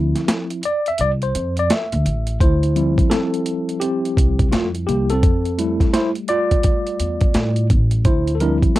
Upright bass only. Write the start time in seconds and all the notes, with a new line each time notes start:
Already playing: D2
0.99 C2
1.35 F2
1.92 D2
2.05 A1
2.41 D2
4.17 C2
4.53 F2
4.88 C2
5.23 F2
7.00 E2
7.35 A2
7.71 A1
8.05 D2